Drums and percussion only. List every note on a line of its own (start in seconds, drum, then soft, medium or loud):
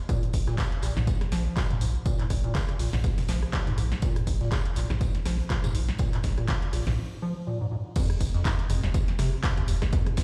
0.09 kick loud
0.09 cross-stick medium
0.09 closed hi-hat medium
0.09 tambourine medium
0.23 closed hi-hat soft
0.33 kick medium
0.33 open hi-hat loud
0.33 tambourine medium
0.47 cross-stick medium
0.47 snare soft
0.47 closed hi-hat soft
0.58 kick loud
0.58 snare loud
0.58 clap loud
0.58 closed hi-hat medium
0.58 tambourine medium
0.72 closed hi-hat soft
0.82 cross-stick medium
0.82 clap soft
0.82 open hi-hat loud
0.82 tambourine medium
0.97 snare medium
0.97 mid tom medium
1.07 kick loud
1.07 closed hi-hat medium
1.07 tambourine medium
1.21 cross-stick medium
1.21 snare soft
1.21 closed hi-hat soft
1.32 snare medium
1.32 open hi-hat loud
1.32 tambourine medium
1.57 kick loud
1.57 cross-stick medium
1.57 snare loud
1.57 clap loud
1.57 closed hi-hat medium
1.57 tambourine medium
1.70 closed hi-hat soft
1.70 mid tom medium
1.81 open hi-hat loud
1.81 tambourine medium
1.95 closed hi-hat soft
2.06 kick loud
2.06 closed hi-hat medium
2.06 tambourine medium
2.19 clap soft
2.19 closed hi-hat medium
2.30 kick medium
2.30 cross-stick medium
2.30 open hi-hat loud
2.30 tambourine medium
2.44 closed hi-hat soft
2.55 kick loud
2.55 snare loud
2.55 clap loud
2.55 closed hi-hat medium
2.55 tambourine medium
2.69 cross-stick medium
2.69 closed hi-hat soft
2.79 snare medium
2.79 open hi-hat medium
2.79 open hi-hat loud
2.93 snare medium
2.93 mid tom medium
3.04 kick loud
3.04 cross-stick medium
3.04 closed hi-hat medium
3.04 tambourine medium
3.18 snare soft
3.18 open hi-hat medium
3.18 mid tom medium
3.28 snare loud
3.28 snare medium
3.28 open hi-hat loud
3.28 tambourine medium
3.42 cross-stick medium
3.53 kick loud
3.53 clap loud
3.53 closed hi-hat medium
3.53 tambourine medium
3.67 closed hi-hat soft
3.67 mid tom medium
3.78 cross-stick medium
3.78 open hi-hat loud
3.78 tambourine medium
3.92 snare medium
3.92 closed hi-hat soft
4.02 kick loud
4.02 closed hi-hat medium
4.02 tambourine medium
4.16 cross-stick medium
4.16 closed hi-hat soft
4.16 closed hi-hat medium
4.27 kick medium
4.27 open hi-hat medium
4.27 tambourine medium
4.41 snare soft
4.41 closed hi-hat soft
4.51 kick loud
4.51 cross-stick medium
4.51 snare loud
4.51 clap loud
4.51 closed hi-hat medium
4.51 tambourine medium
4.65 closed hi-hat medium
4.76 clap soft
4.76 open hi-hat loud
4.76 tambourine medium
4.90 cross-stick medium
4.90 snare medium
4.90 mid tom medium
5.01 kick loud
5.01 closed hi-hat medium
5.01 tambourine medium
5.15 snare soft
5.15 closed hi-hat medium
5.25 cross-stick medium
5.25 snare medium
5.25 open hi-hat loud
5.25 tambourine medium
5.40 closed hi-hat soft
5.50 kick loud
5.50 clap loud
5.50 closed hi-hat medium
5.50 tambourine medium
5.64 cross-stick medium
5.64 closed hi-hat medium
5.64 mid tom medium
5.64 tambourine medium
5.75 open hi-hat loud
5.89 snare medium
5.89 closed hi-hat soft
5.98 kick loud
5.98 cross-stick medium
5.98 closed hi-hat medium
5.98 tambourine medium
6.13 clap soft
6.13 closed hi-hat medium
6.13 closed hi-hat soft
6.23 kick medium
6.23 snare medium
6.23 open hi-hat medium
6.23 tambourine medium
6.38 cross-stick medium
6.38 closed hi-hat soft
6.48 kick loud
6.48 snare loud
6.48 clap loud
6.48 closed hi-hat medium
6.48 tambourine medium
6.62 closed hi-hat medium
6.73 cross-stick medium
6.73 snare medium
6.73 open hi-hat medium
6.73 open hi-hat loud
6.87 snare medium
6.87 closed hi-hat soft
6.87 mid tom medium
7.96 kick loud
7.96 closed hi-hat medium
7.96 tambourine medium
7.96 crash loud
8.09 cross-stick medium
8.09 closed hi-hat soft
8.09 closed hi-hat medium
8.21 kick medium
8.21 open hi-hat loud
8.21 tambourine medium
8.34 snare medium
8.34 closed hi-hat soft
8.45 kick loud
8.45 cross-stick soft
8.45 snare loud
8.45 clap loud
8.45 closed hi-hat medium
8.45 tambourine medium
8.59 closed hi-hat medium
8.70 cross-stick medium
8.70 open hi-hat loud
8.70 mid tom loud
8.70 tambourine medium
8.83 snare medium
8.94 kick loud
8.94 cross-stick soft
8.94 closed hi-hat medium
8.94 tambourine medium
9.08 snare soft
9.08 closed hi-hat medium
9.18 cross-stick medium
9.18 snare medium
9.18 open hi-hat loud
9.18 tambourine medium
9.43 kick loud
9.43 snare loud
9.43 clap loud
9.43 closed hi-hat medium
9.43 tambourine medium
9.57 cross-stick soft
9.57 closed hi-hat medium
9.57 mid tom medium
9.68 open hi-hat loud
9.68 tambourine medium
9.82 kick medium
9.82 cross-stick medium
9.82 snare medium
9.92 kick loud
9.92 closed hi-hat medium
9.92 tambourine medium
10.06 cross-stick medium
10.06 closed hi-hat medium
10.06 mid tom medium
10.17 kick medium
10.17 snare medium
10.17 open hi-hat loud
10.17 tambourine medium